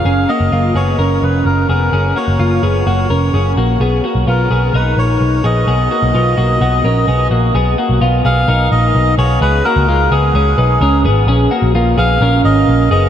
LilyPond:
<<
  \new Staff \with { instrumentName = "Melodica" } { \time 4/4 \key ces \lydian \tempo 4 = 128 f''8 ees''4 des''4 ces''8 bes'8 bes'8~ | bes'8 des''2. r8 | r4 bes'4 ces''8 des''4 ees''8~ | ees''2.~ ees''8 r8 |
r4. f''4 ees''4 des''8 | ces''8 bes'4 aes'2 r8 | r4. f''4 ees''4 ees''8 | }
  \new Staff \with { instrumentName = "Clean electric guitar" } { \time 4/4 \key ces \lydian <des' aes'>8 <bes ges'>8 <bes f'>8 <ces' aes'>8 <des' bes'>4. <ces' aes'>8 | <des' aes'>8 <bes ges'>8 <bes f'>8 <ces' aes'>8 <bes ges'>8 <des' bes'>8 <des' aes'>8 <bes ges'>8 | <ces' aes'>8 <bes ges'>8 <ces' f'>8 <ces' aes'>8 <ees' bes'>4. <ces' aes'>8 | <ces' aes'>8 <bes ges'>8 <ces' f'>8 <bes ges'>8 <ces' ges'>8 <des' bes'>8 <ces' aes'>8 <bes ges'>8 |
<ces' aes'>8 <bes ges'>8 <ces' f'>8 <ces' aes'>8 <ees' bes'>4. <ces' aes'>8 | <des' aes'>8 <bes ges'>8 <aes f'>8 <ces' aes'>8 <des' aes'>8 <ees' ces''>8 <des' bes'>8 <ces' aes'>8 | <des' aes'>8 <bes ges'>8 <bes f'>8 <ces' aes'>8 <des' bes'>4. <ces' aes'>8 | }
  \new Staff \with { instrumentName = "Picked electric bass" } { \clef bass \time 4/4 \key ces \lydian ges,,8 r16 ges,,16 ges,,8 ges,,8 ges,,8 f,,8 ges,,8 f,,8 | ges,,8 r16 ges,,16 ges,,8 ges,,8 ges,,8 f,,8 ges,,8 bes,,8 | ces,8 r16 ces,16 ces,8 ces,8 ces,8 bes,,8 ces,8 bes,,8 | ces,8 r16 ces,16 ces,8 ces,8 ces,8 bes,,8 ces,8 bes,,8 |
ces,8 r16 ces,16 ces,8 ces,8 ces,8 bes,,8 ces,8 ces,8 | des,8 r16 des,16 des,8 des,8 des,8 ces,8 des,8 aes,,8 | bes,,8 r16 bes,,16 bes,,8 bes,,8 bes,,8 aes,,8 bes,,8 ges,,8 | }
>>